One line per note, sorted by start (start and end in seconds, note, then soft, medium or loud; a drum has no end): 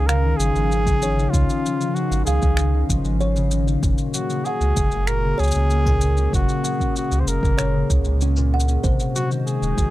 0.00 0.34 C#2 medium
0.00 0.13 D#3 medium
0.00 0.29 G#3 medium
0.00 1.43 A#3 medium
0.00 0.71 C#4 medium
0.00 3.80 C#4 medium
0.00 3.80 D#4 medium
0.00 3.80 F5 loud
0.06 0.29 C#3 medium
0.06 0.38 A#4 loud
0.06 0.27 F5 medium
0.06 finger snap medium
0.06 shaker medium
0.25 0.92 D#3 medium
0.36 0.52 G#1 loud
0.36 0.92 F3 medium
0.36 1.31 G#4 loud
0.36 shaker medium
0.55 1.28 G#1 medium
0.55 1.07 G#3 medium
0.55 shaker medium
0.72 2.43 C#4 medium
0.72 shaker medium
0.86 1.07 C#3 loud
0.86 kick loud
0.86 shaker soft
1.02 1.38 D#3 medium
1.02 1.32 C#5 medium
1.02 shaker medium
1.19 3.66 D#4 medium
1.19 shaker medium
1.30 1.46 C#2 loud
1.30 1.96 F4 loud
1.30 kick loud
1.34 1.85 C#3 medium
1.34 shaker medium
1.50 shaker soft
1.65 1.85 F3 medium
1.65 shaker medium
1.81 2.63 D#3 medium
1.81 shaker soft
1.94 2.25 F#4 medium
1.94 shaker medium
2.11 2.23 G#1 medium
2.11 2.79 G#3 medium
2.11 shaker medium
2.25 2.39 C#2 medium
2.25 2.85 G#4 medium
2.25 2.45 F5 medium
2.25 shaker medium
2.42 2.84 C#2 medium
2.42 3.20 C#4 medium
2.42 kick loud
2.42 shaker soft
2.57 2.79 C#3 medium
2.57 finger snap medium
2.57 shaker medium
2.74 3.42 D#3 medium
2.89 3.02 G#1 loud
2.89 3.42 F3 medium
2.89 kick loud
2.89 shaker loud
3.04 3.77 G#1 medium
3.04 3.57 G#3 medium
3.04 shaker medium
3.21 6.10 C#4 medium
3.21 3.50 C#5 loud
3.21 shaker medium
3.36 3.57 C#3 loud
3.36 shaker soft
3.51 3.88 D#3 medium
3.51 shaker medium
3.67 6.37 D#4 medium
3.67 shaker medium
3.82 3.95 F#1 loud
3.82 4.35 A#2 medium
3.82 8.79 A#3 medium
3.82 6.30 F#4 medium
3.82 8.79 G#4 medium
3.82 kick loud
3.82 shaker medium
3.98 shaker soft
4.14 4.35 F#3 medium
4.14 4.46 F#4 medium
4.14 shaker medium
4.30 5.13 C#3 medium
4.30 shaker medium
4.45 5.09 G#4 loud
4.45 4.64 F#5 medium
4.45 shaker medium
4.61 4.73 C#2 medium
4.61 5.54 G#3 medium
4.61 shaker soft
4.77 4.89 F#1 medium
4.77 kick loud
4.77 shaker loud
4.91 5.34 F#1 medium
4.91 5.70 A#3 medium
4.91 shaker medium
5.07 5.29 A#2 medium
5.07 5.41 A#4 loud
5.07 finger snap medium
5.07 shaker medium
5.23 5.92 C#3 medium
5.38 5.52 C#2 loud
5.38 6.07 F#3 medium
5.38 6.33 G#4 loud
5.38 5.68 C#5 loud
5.38 shaker soft
5.43 shaker medium
5.47 shaker medium
5.51 shaker medium
5.54 6.28 C#2 medium
5.54 7.10 G#3 medium
5.54 shaker medium
5.70 7.42 A#3 medium
5.70 shaker medium
5.86 6.07 A#2 loud
5.86 kick loud
5.86 shaker soft
6.01 6.38 C#3 medium
6.01 shaker medium
6.17 8.21 C#4 medium
6.17 shaker medium
6.33 6.45 F#1 loud
6.33 6.85 A#2 medium
6.33 6.92 F#4 loud
6.33 kick loud
6.33 shaker medium
6.49 shaker soft
6.64 6.85 F#3 medium
6.64 6.82 F#5 medium
6.64 shaker medium
6.80 7.63 C#3 medium
6.80 kick medium
6.80 shaker soft
6.96 7.22 F#4 medium
6.96 shaker medium
7.11 7.24 C#2 medium
7.11 8.51 G#3 medium
7.11 shaker soft
7.20 7.29 C5 medium
7.27 7.39 F#1 medium
7.27 7.90 A#4 loud
7.27 shaker medium
7.43 7.84 F#1 medium
7.43 7.89 A#3 medium
7.43 kick loud
7.43 shaker medium
7.58 7.79 A#2 medium
7.58 7.88 C#5 loud
7.58 finger snap medium
7.58 shaker medium
7.74 8.10 C#3 medium
7.90 8.02 C#2 loud
7.90 9.90 A#3 medium
7.90 kick loud
7.90 shaker medium
8.05 8.78 C#2 medium
8.05 8.36 A#2 medium
8.05 shaker medium
8.21 8.68 C#4 medium
8.21 8.51 C#4 medium
8.21 shaker medium
8.36 8.88 A#2 loud
8.36 shaker soft
8.52 8.88 G#3 medium
8.52 8.71 F#5 medium
8.60 shaker medium
8.68 8.90 C#4 medium
8.68 shaker medium
8.83 8.96 G#1 loud
8.83 9.35 C3 medium
8.83 9.90 G#3 medium
8.83 9.90 F#4 medium
8.83 9.90 C5 medium
8.83 9.13 C5 medium
8.83 kick loud
8.83 shaker medium
9.00 shaker soft
9.15 9.35 F#3 medium
9.15 9.29 F#4 medium
9.15 shaker medium
9.31 9.90 D#3 medium
9.31 shaker soft
9.46 9.90 G#4 loud
9.46 shaker medium
9.62 9.74 D#1 medium
9.62 9.90 G#3 medium
9.62 shaker soft
9.78 9.90 G#1 medium
9.78 kick loud
9.78 shaker medium